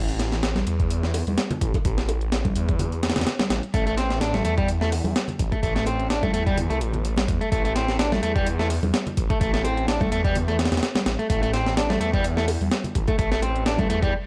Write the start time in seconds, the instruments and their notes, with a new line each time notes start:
Already playing: detuned saw bass A1
0.09 closed hi-hat
0.19 snare, closed hi-hat
0.32 snare, closed hi-hat
0.43 snare, closed hi-hat
0.56 snare, closed hi-hat, high conga
0.67 detuned saw bass E2, closed hi-hat
0.80 kick, closed hi-hat
0.90 closed hi-hat
1.03 snare
1.14 closed hi-hat, open hi-hat, high bongo
1.27 detuned saw bass E2, closed hi-hat, high conga
1.38 snare, closed hi-hat
1.50 closed hi-hat, low conga
1.61 detuned saw bass A1, kick, closed hi-hat
1.74 kick, closed hi-hat, high bongo
1.85 detuned saw bass A1, kick, closed hi-hat
1.98 snare, closed hi-hat
2.09 closed hi-hat, high bongo
2.21 closed hi-hat
2.32 snare, closed hi-hat
2.45 kick, closed hi-hat, high conga
2.56 detuned saw bass E2, closed hi-hat
2.69 kick, closed hi-hat
2.79 closed hi-hat, low conga
2.92 closed hi-hat
3.03 snare, closed hi-hat
3.10 snare, closed hi-hat
3.16 detuned saw bass E2, snare, closed hi-hat, low conga
3.21 snare, closed hi-hat
3.27 snare, closed hi-hat
3.39 snare, closed hi-hat, high conga
3.50 detuned saw bass A1, snare, closed hi-hat
3.63 closed hi-hat
3.74 detuned saw bass A1, clean electric guitar A3, kick, closed hi-hat
3.87 clean electric guitar A3, closed hi-hat
3.97 clean electric guitar C4, snare, closed hi-hat
4.10 snare, closed hi-hat
4.21 clean electric guitar D4, snare, closed hi-hat
4.34 clean electric guitar A3, snare, closed hi-hat, high conga
4.45 detuned saw bass E2, clean electric guitar A3, closed hi-hat
4.58 clean electric guitar G3, kick, closed hi-hat
4.68 closed hi-hat
4.81 clean electric guitar A3, snare
4.92 closed hi-hat, open hi-hat, high bongo
5.04 detuned saw bass E2, closed hi-hat, high conga
5.16 snare, closed hi-hat
5.28 closed hi-hat, low conga
5.39 detuned saw bass A1, kick, closed hi-hat
5.52 clean electric guitar A3, kick, closed hi-hat, high bongo
5.63 detuned saw bass A1, clean electric guitar A3, kick, closed hi-hat
5.76 clean electric guitar A3, snare, closed hi-hat
5.86 clean electric guitar C4, closed hi-hat, high bongo
6.00 closed hi-hat
6.10 clean electric guitar D4, snare, closed hi-hat
6.23 clean electric guitar A3, kick, closed hi-hat, high conga
6.33 detuned saw bass E2, clean electric guitar A3, closed hi-hat
6.46 clean electric guitar G3, kick, closed hi-hat
6.58 closed hi-hat, low conga
6.70 detuned saw bass C2, clean electric guitar A3, closed hi-hat
6.81 detuned saw bass A1, closed hi-hat
6.93 closed hi-hat, low conga
7.05 closed hi-hat
7.16 snare, closed hi-hat, high conga
7.28 detuned saw bass E2, kick, closed hi-hat
7.41 clean electric guitar A3, closed hi-hat
7.52 detuned saw bass A1, clean electric guitar A3, kick, closed hi-hat
7.65 clean electric guitar A3, closed hi-hat
7.75 clean electric guitar C4, snare, closed hi-hat
7.88 snare, closed hi-hat
7.99 clean electric guitar D4, snare, closed hi-hat
8.12 clean electric guitar A3, snare, closed hi-hat, high conga
8.23 detuned saw bass E2, clean electric guitar A3, closed hi-hat
8.36 clean electric guitar G3, kick, closed hi-hat
8.47 closed hi-hat
8.59 clean electric guitar A3, snare
8.70 closed hi-hat, open hi-hat, high bongo
8.83 detuned saw bass E2, closed hi-hat, high conga
8.94 snare, closed hi-hat
9.07 closed hi-hat, low conga
9.17 detuned saw bass A1, kick, closed hi-hat
9.30 clean electric guitar A3, kick, closed hi-hat, high bongo
9.41 detuned saw bass A1, clean electric guitar A3, kick, closed hi-hat
9.54 clean electric guitar A3, snare, closed hi-hat
9.64 clean electric guitar C4, closed hi-hat, high bongo
9.77 closed hi-hat
9.88 clean electric guitar D4, snare, closed hi-hat
10.00 clean electric guitar A3, kick, closed hi-hat, high conga
10.12 detuned saw bass E2, clean electric guitar A3, closed hi-hat
10.24 clean electric guitar G3, kick, closed hi-hat
10.35 closed hi-hat, low conga
10.48 clean electric guitar A3, closed hi-hat
10.59 snare, closed hi-hat
10.65 snare, closed hi-hat
10.72 detuned saw bass E2, snare, closed hi-hat, low conga
10.77 snare, closed hi-hat
10.83 snare, closed hi-hat
10.95 snare, closed hi-hat, high conga
11.06 detuned saw bass A1, snare, closed hi-hat
11.19 clean electric guitar A3, closed hi-hat
11.30 detuned saw bass A1, clean electric guitar A3, kick, closed hi-hat
11.43 clean electric guitar A3, closed hi-hat
11.53 clean electric guitar C4, snare, closed hi-hat
11.66 snare, closed hi-hat
11.77 clean electric guitar D4, snare, closed hi-hat
11.90 clean electric guitar A3, snare, closed hi-hat, high conga
12.01 detuned saw bass E2, clean electric guitar A3, closed hi-hat
12.13 clean electric guitar G3, kick, closed hi-hat
12.24 closed hi-hat
12.37 clean electric guitar A3, snare
12.48 closed hi-hat, open hi-hat, high bongo
12.61 detuned saw bass E2, closed hi-hat, high conga
12.71 snare, closed hi-hat
12.84 closed hi-hat, low conga
12.95 detuned saw bass A1, kick, closed hi-hat
13.08 clean electric guitar A3, kick, closed hi-hat, high bongo
13.19 detuned saw bass A1, clean electric guitar A3, kick, closed hi-hat
13.32 clean electric guitar A3, snare, closed hi-hat
13.42 clean electric guitar C4, closed hi-hat, high bongo
13.56 closed hi-hat
13.66 clean electric guitar D4, snare, closed hi-hat
13.78 clean electric guitar A3, kick, closed hi-hat, high conga
13.90 detuned saw bass E2, clean electric guitar A3, closed hi-hat
14.02 clean electric guitar G3, kick, closed hi-hat
14.13 reverse cymbal